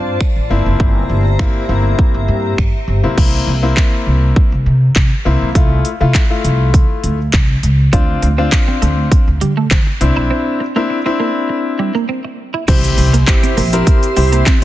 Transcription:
Already playing: upright bass G2, grand piano C4 D4 F4, ambient pad F4 C5 D5 A5
0.21 finger snap, kick
0.36 upright bass A1
0.50 upright bass G1, grand piano A#3 C4 E4, ambient pad G4 E5 A#5
0.66 upright bass F#1
0.80 upright bass G1, kick
1.10 upright bass G1
1.39 grand piano A#3 C4 E4, finger snap, kick
1.69 upright bass G1, grand piano A#3 C4 E4
1.99 kick
2.14 upright bass G1
2.28 upright bass G2
2.58 upright bass G2, finger snap, kick
2.88 upright bass G1
3.03 upright bass B1, grand piano A#3 C4 E4
3.17 upright bass C2, grand piano A#3 C4 E4, kick, crash
3.47 upright bass C2
3.63 grand piano A#3 C4 E4
3.77 kick, clap
4.07 upright bass C2
4.36 kick
4.52 upright bass C2
4.66 upright bass C3
4.96 upright bass C3, kick, clap
5.25 upright bass C2, grand piano A#3 C4 E4
5.41 upright bass B1
5.55 upright bass C2, grand piano A3 E4 F4, kick, closed hi-hat
5.85 closed hi-hat
6.01 upright bass C3, grand piano A3 E4 F4
6.15 kick, clap, closed hi-hat
6.30 grand piano A3 E4 F4
6.44 upright bass C2, closed hi-hat
6.74 kick, closed hi-hat
7.04 upright bass D2, closed hi-hat
7.33 upright bass C2, kick, clap, closed hi-hat
7.63 upright bass C#2, closed hi-hat
7.93 upright bass D2, grand piano C4 D4 F4, clean electric guitar D4, kick, closed hi-hat
8.22 upright bass D2, muted clean electric guitar stroke, closed hi-hat
8.38 grand piano C4 D4 F4, clean electric guitar C4
8.52 muted clean electric guitar stroke, kick, clap, closed hi-hat
8.68 clean electric guitar C4
8.82 upright bass D2, clean electric guitar A3, closed hi-hat
9.12 muted clean electric guitar stroke, kick, closed hi-hat
9.28 upright bass D2
9.41 upright bass D3, clean electric guitar G3, closed hi-hat
9.57 clean electric guitar A3
9.71 upright bass D3, clean electric guitar C4, kick, clap, closed hi-hat
9.87 muted clean electric guitar stroke
10.01 upright bass C2, grand piano C4 D4 E4, closed hi-hat
10.17 upright bass B1, clean electric guitar E4
10.31 clean electric guitar C4
10.60 muted clean electric guitar stroke
10.76 clean electric guitar A#3, grand piano C4 D4 E4
10.90 muted clean electric guitar stroke
11.06 grand piano C4 D4 E4, clean electric guitar C4
11.20 clean electric guitar A#3
11.49 muted clean electric guitar stroke
11.79 clean electric guitar G3
11.95 clean electric guitar A#3
12.09 clean electric guitar C4
12.25 muted clean electric guitar stroke
12.54 clean electric guitar E4
12.68 upright bass C2, grand piano C4 E4 G4 C5, clean electric guitar C4, ambient pad G4 C5 E5 C6, kick, closed hi-hat, crash, impact, shaker
12.84 closed hi-hat, shaker
12.98 upright bass C2, muted clean electric guitar stroke, open hi-hat, shaker
13.13 clean electric guitar A#3, closed hi-hat, shaker
13.27 grand piano C4 E4 G4 C5, muted clean electric guitar stroke, kick, clap, closed hi-hat, shaker
13.43 clean electric guitar C4, closed hi-hat, shaker
13.57 upright bass A#1, clean electric guitar A#3, open hi-hat, shaker
13.73 grand piano C4 E4 G4 A#4, closed hi-hat, shaker
13.87 muted clean electric guitar stroke, kick, closed hi-hat, shaker
14.03 closed hi-hat, shaker
14.16 upright bass C2, clean electric guitar G3, grand piano C4 E4 G4 C5, open hi-hat, shaker
14.32 clean electric guitar A#3, closed hi-hat, shaker
14.46 clean electric guitar C4, kick, clap, closed hi-hat, shaker

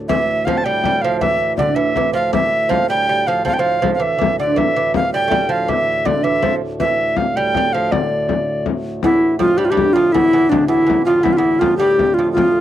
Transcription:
0.08 harmonium D2 A2, lute E3, recorder E5, frame drum
0.28 frame drum
0.45 lute F3, recorder F5, frame drum
0.57 recorder A5
0.64 lute G3, recorder G5
0.84 lute G3, frame drum
1.02 lute F3, recorder F5, frame drum
1.20 lute E3, recorder E5, frame drum
1.39 frame drum
1.57 lute D3, recorder D5, frame drum
1.75 lute E3, recorder E5
1.96 lute E3, frame drum
2.13 lute F3, recorder F5, frame drum
2.33 lute E3, recorder E5, frame drum
2.51 frame drum
2.69 lute F3, recorder F5, frame drum
2.89 lute G3, recorder G5
3.09 lute G3
3.27 lute F3, recorder F5, frame drum
3.45 lute F3, recorder F5, frame drum
3.54 recorder G5
3.59 lute F3, recorder F5
3.64 frame drum
3.82 lute F3, frame drum
3.94 recorder F5
4.00 lute E3, recorder E5
4.18 lute E3, frame drum
4.39 lute D3, recorder D5
4.56 harmonium D2 A2, lute E3, recorder E5, frame drum
4.76 lute E3, frame drum
4.94 recorder F5, frame drum
5.14 lute G3, recorder G5
5.28 lute G3 A3, frame drum
5.49 lute F3, recorder F5, frame drum
5.68 lute E3, recorder E5, frame drum
6.05 lute D3, recorder D5, frame drum
6.23 lute E3, recorder E5
6.42 lute F3, frame drum
6.61 frame drum
6.80 lute E3, recorder E5, frame drum
6.98 frame drum
7.17 recorder F5, frame drum
7.36 lute G3, recorder G5
7.55 lute G3, frame drum
7.73 lute F3, recorder F5, frame drum
7.92 lute D3, recorder D5, frame drum
8.29 frame drum
8.66 frame drum
9.03 harmonium D2 A2, lute E2, recorder E4, frame drum
9.22 frame drum
9.39 lute F2, recorder F4, frame drum
9.57 lute G2, recorder G4
9.65 recorder F4
9.70 lute G2, recorder G4
9.77 frame drum
9.93 lute F2, recorder F4, frame drum
10.12 lute E2, recorder E4, frame drum
10.33 lute E2, frame drum
10.49 lute D2, recorder D4, frame drum
10.68 lute E2, recorder E4
10.87 lute E2, frame drum
11.05 lute F2, recorder F4, frame drum
11.23 lute E2, recorder E4, frame drum
11.33 recorder F4
11.37 lute E2, recorder E4
11.45 frame drum
11.59 lute F2, recorder F4, frame drum
11.77 lute G2, recorder G4
11.99 frame drum
12.14 recorder F4
12.18 lute F2, frame drum
12.32 recorder F4
12.37 lute F2, frame drum

